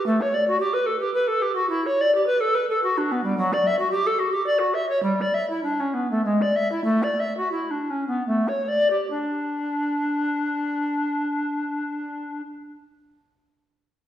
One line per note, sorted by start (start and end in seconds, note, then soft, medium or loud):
0.06 0.22 A3 medium
0.21 0.35 C#5 medium
0.33 0.46 D5 medium
0.47 0.59 F#4 medium
0.60 0.74 G4 medium
0.73 0.87 B4 medium
0.86 0.98 A4 medium
0.99 1.12 G4 medium
1.14 1.29 B4 medium
1.27 1.43 A4 medium
1.41 1.54 G4 medium
1.55 1.68 F#4 medium
1.69 1.87 E4 medium
1.85 2.02 C#5 medium
2.00 2.13 D5 medium
2.14 2.25 G4 medium
2.26 2.41 B4 medium
2.40 2.56 A4 medium
2.54 2.68 B4 medium
2.69 2.81 A4 medium
2.83 2.99 F#4 medium
2.97 3.13 D4 medium
3.11 3.23 B3 medium
3.23 3.37 G3 medium
3.37 3.54 F#3 medium
3.52 3.68 D5 medium
3.66 3.78 E5 medium
3.78 3.90 F#4 medium
3.91 4.07 G4 medium
4.06 4.20 A4 medium
4.19 4.30 F#4 medium
4.31 4.45 G4 medium
4.46 4.60 D5 medium
4.58 4.75 F#4 medium
4.74 4.88 E5 medium
4.88 5.02 C#5 medium
5.02 5.22 G3 medium
5.20 5.35 D5 medium
5.34 5.48 E5 medium
5.49 5.62 E4 medium
5.63 5.81 D4 medium
5.79 5.95 C#4 medium
5.93 6.08 B3 medium
6.10 6.23 A3 medium
6.24 6.42 G#3 medium
6.41 6.57 D5 medium
6.55 6.70 E5 medium
6.71 6.83 E4 soft
6.84 7.04 A3 medium
7.02 7.21 D5 medium
7.19 7.35 E5 medium
7.37 7.51 F#4 medium
7.51 7.72 E4 medium
7.70 7.91 D4 soft
7.90 8.06 C#4 soft
8.07 8.25 B3 soft
8.27 8.49 A3 medium
8.47 8.69 C#5 soft
8.68 8.88 D5 soft
8.90 9.09 G4 soft
9.10 12.41 D4 medium